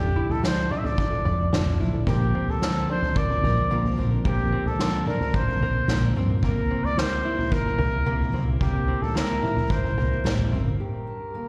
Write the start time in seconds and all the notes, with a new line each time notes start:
Already playing: F1 D4 E4 G4 D5
0.02 D4 E4 A4
0.16 E4
0.30 A4, floor tom
0.43 F3 D4 E4 A4 C5, snare
0.70 F3 D4 E4 F4 A4 D5, mid tom
0.78 E5
0.84 D4 E4 A4 D5, floor tom
0.98 D4, kick
1.10 D4 E4 A4, mid tom
1.25 F1 F3 D4 E4 A4 D5, floor tom
1.53 F1 F3 D4 E4 A4, snare, mid tom
1.66 floor tom
1.79 A1 F3 D4 E4 A4, mid tom
1.93 D4 E4 A4
2.06 A#1 A#2 D3 F3 A#3 C4 D4 G4 A#4, kick, floor tom
2.21 F3 C4 D4 A#4
2.35 C4
2.48 A4, floor tom
2.62 A#2 D3 F3 A#3 C4 D4 A#4, snare
2.89 F3 C4 D4 A#4 C5
3.02 C4 D4 A#4, floor tom
3.07 F3
3.16 A#3 D5, kick
3.29 F3 C4 D4 A#4, mid tom
3.43 A#1 F3 C4 D4 A#4, floor tom
3.70 A#1 A#2 D3 F3 A#3 C4 D4 A#4
3.84 floor tom
3.97 A#1 F3 C4 D4 A#4, mid tom
4.11 F3 C4 D4 A#4
4.25 A#1 A#2 D3 F3 A#3 C4 D4 G4 A#4, kick, floor tom
4.39 F3 C4 D4 A#4
4.52 C4
4.66 A4, floor tom
4.79 A#2 D3 F3 A#3 C4 D4 A#4, snare
5.06 F3 C4 D4 A#4, mid tom
5.19 F3 C4 D4 A#4, floor tom
5.34 A#3 C5, kick
5.47 F3 C4 D4 A#4, mid tom
5.60 A#1 F3 C4 D4 A#4, floor tom
5.87 A#1 A#2 D3 F3 A#3 C4 D4 A#4, snare, mid tom
6.01 floor tom
6.15 G2 F3 C4 D4 A#4, mid tom
6.29 F3 C4 D4 A#4
6.42 C2 C3 G3 A#3 E4 A#4, kick, floor tom
6.57 A#3 E4 A#4
6.71 C4
6.84 D5, floor tom
6.97 C3 G3 A#3 E4 A#4 C5, snare
7.23 G3 A#3 E4 A#4
7.37 A#3 E4 A#4, floor tom
7.51 A#3 A#4, kick
7.65 A#3 E4 A#4, mid tom
7.78 C2 G3 A#3 E4 A#4, floor tom
8.05 C2 C3 G3 A#3 E4 A#4
8.20 floor tom
8.32 C2 G3 A#3 C4 E4 A#4, mid tom
8.45 A#3 E4 A#4
8.61 C2 C3 G3 A#3 E4 G4 A#4, kick, floor tom
8.73 A#3 E4 A#4
8.88 C4
9.02 A4, floor tom
9.15 C3 G3 A#3 E4 A#4, snare
9.43 G3 A#3 E4 A#4, mid tom
9.56 A#3 E4 A#4, floor tom
9.70 A#3 C5, kick
9.84 A#3 E4 A#4, mid tom
9.97 C2 G3 A#3 E4 A#4, floor tom
10.24 A1 C3 G3 A#3 E4 A#4, snare, mid tom
10.39 floor tom
10.52 G1 G3 A#3 C4 E4 A#4, mid tom
10.65 A#3 E4 A#4
10.79 G2 G4 A#4
11.07 D4
11.34 D3 A#3